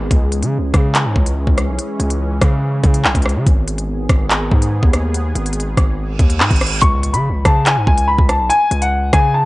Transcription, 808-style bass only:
0.11 C#2
0.42 C#3
0.58 C#2
0.74 C#3
1.05 G#2
1.16 C#2
1.47 C#2
1.68 B1
2.00 C#2
2.42 C#3
2.84 C#3
3.05 B1
3.15 C#2
3.36 C#3
3.46 G#1
4.09 G#1
4.51 G#2
4.83 D#2
5.35 G#1
5.77 G#1
6.19 D#2
6.40 G#2
6.51 G#1
6.82 C#2
7.14 C#3
7.29 C#2
7.45 C#3
7.77 G#2
7.87 C#2
8.19 C#2
8.40 B1
8.71 C#2
9.13 C#3

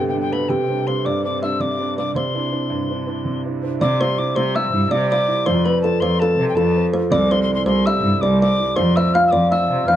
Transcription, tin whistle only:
0.09 G5
0.21 G5
0.33 B5
0.49 G5
0.87 C6
1.05 D6
1.25 D6
1.43 E6
1.61 D6
1.98 D6
2.16 C6
3.82 D6
4.01 C6
4.19 D6
4.36 C6
4.55 E6
4.92 D6
5.10 D6
5.46 C6
5.65 B5
5.82 A5
6.00 C6
6.20 A5
6.49 G5
6.55 A5
7.11 D6
7.31 C6
7.43 C6
7.54 C6
7.66 C6
7.86 E6
8.21 D6
8.41 D6
8.76 C6
8.96 E6
9.14 F6
9.27 D6 E6
9.51 E6
9.87 F6

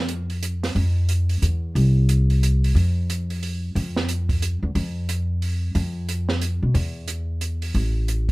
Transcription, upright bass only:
Already playing: F2
0.75 F2
1.42 E2
1.75 C2
2.75 F2
3.75 F2
4.63 E2
4.75 F2
5.75 F2
6.63 B2
6.74 E2
7.74 A1

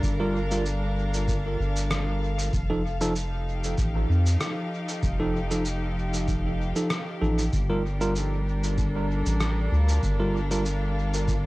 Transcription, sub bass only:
0.03 G1
1.59 G1
2.53 F1
3.78 A1
4.09 F2
5.03 F1
7.22 A1
7.53 G1
9.26 A1
9.72 D2
10.03 G1

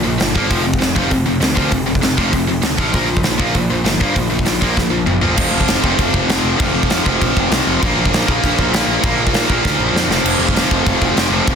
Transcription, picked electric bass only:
0.04 A#1
0.20 G1
0.35 G1
0.51 F1
0.81 F1
0.96 F1
1.12 F1
1.27 F1
1.41 D2
1.57 D2
1.72 F1
2.03 F1
2.18 F1
2.33 F1
2.48 F1
2.62 D2
2.78 A1
2.94 A#1
3.23 A#1
3.39 A#1
3.55 A#1
3.70 A#1
3.84 G1
4.01 G2
4.16 A#1
4.43 A#1
4.62 A#1
4.77 A#1
4.90 A#1
5.04 G1
5.21 G1
5.37 F1
5.51 F1
5.66 F1
5.84 F1
5.99 F1
6.14 F1
6.28 F1
6.43 F1
6.60 F1
6.74 F1
6.90 F2
7.06 F1
7.22 A#1
7.37 F1
7.50 C2
7.67 F1
7.83 A#1
7.96 A#1
8.11 A#1
8.28 A#1
8.43 A#1
8.59 A#1
8.72 A#1
8.87 A#1
9.04 A#1
9.17 A#1
9.33 A#2
9.49 A#1
9.65 D2
9.79 A#1
9.93 F2
10.07 F1
10.24 F1
10.39 F1
10.52 F1
10.71 F1
10.86 F1
11.02 F1
11.16 F1
11.29 F1
11.47 F1

